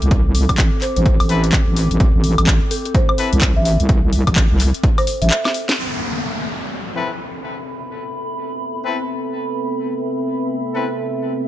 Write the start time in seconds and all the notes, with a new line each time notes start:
Already playing: C4 A4 E5 D6
0.02 C2, closed hi-hat
0.11 kick, closed hi-hat
0.35 open hi-hat
0.49 A1, kick, closed hi-hat, high woodblock
0.58 kick, clap, closed hi-hat
0.82 C5, clap, open hi-hat
0.96 A1 C5, closed hi-hat
1.06 kick, closed hi-hat
1.20 A1, open hi-hat, high woodblock
1.29 C4 E4 A4 B4, open hi-hat
1.44 closed hi-hat
1.53 kick, clap, closed hi-hat
1.67 A1
1.76 open hi-hat
1.91 A1, closed hi-hat
2.00 A1, kick, closed hi-hat
2.15 A1
2.24 open hi-hat
2.38 A1, closed hi-hat, high woodblock
2.47 kick, clap, closed hi-hat
2.71 A4, open hi-hat
2.85 A4, closed hi-hat
2.95 C5, kick, closed hi-hat
3.09 C5, high woodblock
3.18 C4 E4 A4 B4, open hi-hat
3.33 C2, closed hi-hat
3.41 kick, clap, closed hi-hat
3.56 A1 E5
3.65 E5, open hi-hat
3.80 C2, closed hi-hat
3.89 kick, closed hi-hat
4.13 open hi-hat
4.27 A1, kick, closed hi-hat, high woodblock
4.36 kick, clap, closed hi-hat
4.51 C2
4.60 clap, open hi-hat
4.74 closed hi-hat
4.84 kick, closed hi-hat
4.98 C5, open hi-hat, high woodblock
5.07 open hi-hat
5.22 A1 E5, closed hi-hat
5.31 E5, clap, closed hi-hat
5.45 E5, snare, high woodblock
5.54 open hi-hat
5.69 snare, closed hi-hat
5.78 C4 A4 B4, downlifter
6.20 A4
6.47 B5
6.86 E5
6.96 C4 E4 A4 B4
8.85 C4 E4 A4 B4
10.74 C4 E4 A4 B4